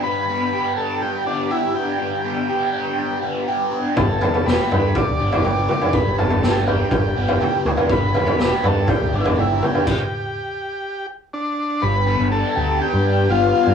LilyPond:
<<
  \new Staff \with { instrumentName = "Transistor combo organ" } { \time 4/4 \key g \major \tempo 4 = 122 b'4. a'8 g'8 d'8 e'8 g'8~ | g'2~ g'8 r4. | a'4 b'4 d''4 d''4 | b'8 a'4 g'2 r8 |
b'4. a'8 g'8 d'32 e'32 d'16 e'8 g'8~ | g'2~ g'8 r8 d'4 | b'4 a'4 g'4 f'4 | }
  \new Staff \with { instrumentName = "Overdriven electric guitar" } { \time 4/4 \key g \major <g, g b d' g'>8 b8 g'8 d'8 g8 b8 g'8 d'8 | g,8 b8 g'8 d'8 g8 b8 g'8 d'8 | g,8 b8 g'8 d'8 g8 b8 g'8 d'8 | g,8 b8 g'8 d'8 g8 b8 g'8 d'8 |
g,8 b8 g'8 d'8 g8 b8 g'8 d'8 | r1 | g,8 b8 d'8 g'8 d'8 g8 b8 d'8 | }
  \new Staff \with { instrumentName = "Fingered electric bass" } { \clef bass \time 4/4 \key g \major r1 | r1 | g,,8 r8 e,,16 r16 g,8 r16 d,16 g,,8 g,,8 r8 | r16 g,,4.~ g,,16 g,,8 g,,8 r8 d,16 r16 |
g,,8 r8 e,,16 r16 g,8 r16 d,16 g,,8 g,,8 r8 | r1 | g,,8. g,,8 r16 d,8 r16 g,8. g,,8 r16 g,16 | }
  \new DrumStaff \with { instrumentName = "Drums" } \drummode { \time 4/4 r4 r4 r4 r4 | r4 r4 r4 r4 | <bd tomfh>8 tomfh16 tomfh16 sn8 tomfh8 <bd tomfh>8. tomfh16 toml8 toml16 tomfh16 | <bd tomfh>8 tomfh16 tomfh16 sn8 tomfh8 <bd tomfh>8. tomfh16 toml8 toml16 tomfh16 |
<bd tomfh>8 tomfh16 tomfh16 sn8 tomfh8 <bd tomfh>8. tomfh16 toml8 toml16 tomfh16 | <cymc bd>4 r4 r4 r4 | r4 r4 r4 r4 | }
>>